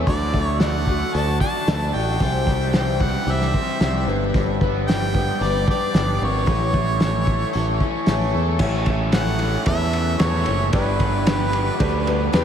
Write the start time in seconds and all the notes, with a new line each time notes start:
0.07 D2 D3 A3 D4 F#4 D5, kick, open hi-hat
0.33 A3 D4 F#4 D5, kick
0.44 C#5
0.60 D3 A3 D4 F#4 D5 F#5, snare, open hi-hat
0.87 A3 D4 F#4 D5, kick
1.13 D2 A3 D4 F#4 D5 A5, open hi-hat
1.40 D4 F#4 D5 A5, kick
1.66 D2 D3 A3 D4 F#4 D5, snare, open hi-hat
1.93 A1 F#4 G5
2.20 C2 C3 E3 G3 C4 E4 C5, kick, open hi-hat
2.46 G3 C4 E4 C5, kick
2.73 C3 E3 G3 C4 E4 C5 G5, snare, open hi-hat
2.99 G3 C4 E4 C5 F#5, kick
3.26 C2 G3 C4 E4 G4 C5, open hi-hat
3.31 E5
3.41 snare
3.54 G3 C4 E4 C5, kick
3.80 C2 C3 E3 G3 C4 E4 C5, snare, open hi-hat
4.07 G1 G2 G3 D4 G4 B4
4.34 G1 G2, kick, open hi-hat
4.61 B3 D4 G4 B4, kick
4.88 G3 D4 G4 B4 G5, snare, open hi-hat
5.13 B3 B4, kick
5.17 D4 G4
5.40 G1 G3 D4 G4 D5, open hi-hat
5.44 G4 B4
5.66 D4 B4, kick
5.70 D4 G4 D5
5.92 G1 G3 B3 D4 G4, snare, open hi-hat
5.97 B4
6.19 G#1 G4
6.24 C#5
6.45 A1 A2 E3 A3 C#4 E4 C#5, kick, open hi-hat
6.72 A3 C#4 E4 C#5, kick
7.00 A2 E3 A3 C#4 E4, snare, open hi-hat
7.04 C#5
7.25 A3 E4 C#5, kick
7.30 A3 C#4
7.53 A1 A3 C#4 A4, open hi-hat
7.57 E4 C#5
7.80 C#4 E4 C#5, kick
7.84 A3
8.06 A1 A2 E3 A3 C#4 E4 C#5, snare, open hi-hat
8.35 E2 A4
8.59 A1 A2 E3 A3 C#4 E4 A4 C#5, kick, crash
8.86 A3 C#4 E4 C#5, kick, ride
9.12 A2 E3 A3 C#4 F#5, snare, ride
9.16 E4 C#5
9.39 A2 E3 A3 C#4 A4, ride
9.66 E2 A3 C#4 E4 A4 E5, kick, ride
9.70 E4 C#5
9.93 A3 C#4 E4 C#5, ride
10.19 E2 A2 E3 A3 C#4 E4 A4 C#5, snare, ride
10.46 F#1 A3 C#4 E4 C#5, ride
10.73 G1 G2 D3 G3 B3 D4 G4 B4, kick, ride
11.00 D4 G4 B4, kick, ride
11.26 G3 D4 G4 B4, snare, ride
11.53 G2 D3 G3 B3 D4 G4, ride
11.80 D2 G3 D4 G4 B4, kick, ride
12.06 D4 G4 B4, ride
12.33 E2 G2 D3 G3 B3 D4 G4 B4, snare, ride